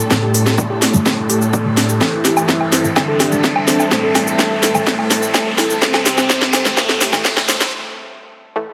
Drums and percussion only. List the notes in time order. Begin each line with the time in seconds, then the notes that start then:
0.11 kick, snare, shaker
0.34 open hi-hat, shaker
0.46 snare, shaker
0.58 kick, shaker
0.82 snare, open hi-hat, shaker
0.94 shaker
1.06 kick, snare, shaker
1.30 open hi-hat, shaker
1.42 shaker
1.53 kick, shaker
1.77 snare, open hi-hat, shaker
1.89 shaker
2.01 kick, snare, low woodblock, shaker
2.25 snare, open hi-hat, shaker
2.37 low woodblock, shaker
2.49 kick, snare, shaker
2.61 low woodblock
2.72 snare, open hi-hat, shaker
2.84 shaker
2.96 kick, snare, low woodblock, shaker
3.20 snare, open hi-hat, low woodblock, shaker
3.32 shaker
3.44 kick, snare, shaker
3.56 low woodblock
3.68 snare, open hi-hat, shaker
3.80 low woodblock, shaker
3.91 kick, snare, shaker
4.15 snare, open hi-hat, low woodblock, shaker
4.27 shaker
4.39 kick, snare, low woodblock, shaker
4.63 snare, open hi-hat, shaker
4.75 low woodblock, shaker
4.87 kick, snare, shaker
4.99 low woodblock
5.11 snare, open hi-hat, shaker
5.23 shaker
5.34 kick, snare, low woodblock, shaker
5.58 snare, open hi-hat, low woodblock, shaker
5.70 shaker
5.82 kick, snare, shaker
5.94 snare, low woodblock
6.06 snare, open hi-hat, shaker
6.18 snare, low woodblock, shaker
6.30 kick, snare, shaker
6.42 snare
6.53 snare, open hi-hat, low woodblock, shaker
6.65 snare, shaker
6.77 kick, snare, low woodblock, shaker
6.89 snare
7.01 snare, open hi-hat, shaker
7.13 snare, low woodblock, shaker
7.25 kick, snare, shaker
7.37 snare, low woodblock
7.49 snare, open hi-hat, shaker
7.61 snare, shaker